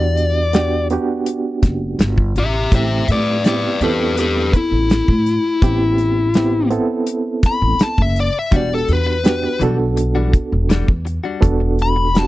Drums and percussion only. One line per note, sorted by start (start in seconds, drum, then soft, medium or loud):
0.17 closed hi-hat medium
0.53 snare medium
0.53 closed hi-hat medium
0.90 closed hi-hat medium
1.26 closed hi-hat medium
1.63 kick medium
1.63 snare soft
1.63 closed hi-hat medium
1.99 snare loud
1.99 closed hi-hat medium
2.18 kick medium
2.36 closed hi-hat medium
2.72 kick loud
2.72 closed hi-hat medium
3.08 closed hi-hat medium
3.44 snare medium
3.44 closed hi-hat medium
3.81 closed hi-hat medium
4.17 closed hi-hat medium
4.53 kick medium
4.53 closed hi-hat medium
4.90 snare loud
4.90 closed hi-hat medium
5.08 kick medium
5.26 closed hi-hat medium
5.62 kick loud
5.62 closed hi-hat medium
5.98 closed hi-hat medium
6.34 snare loud
6.34 closed hi-hat medium
6.71 closed hi-hat medium
7.07 closed hi-hat medium
7.43 kick medium
7.43 snare soft
7.43 closed hi-hat medium
7.79 snare loud
7.79 closed hi-hat medium
7.98 kick medium
8.16 closed hi-hat medium
8.52 kick loud
8.52 closed hi-hat medium
8.88 closed hi-hat medium
9.25 snare loud
9.25 closed hi-hat medium
9.61 closed hi-hat medium
9.97 closed hi-hat medium
10.33 kick medium
10.33 closed hi-hat medium
10.70 snare loud
10.70 closed hi-hat medium
10.88 kick medium
11.07 closed hi-hat medium
11.42 kick loud
11.42 closed hi-hat medium
11.79 closed hi-hat medium
12.15 snare loud
12.15 closed hi-hat medium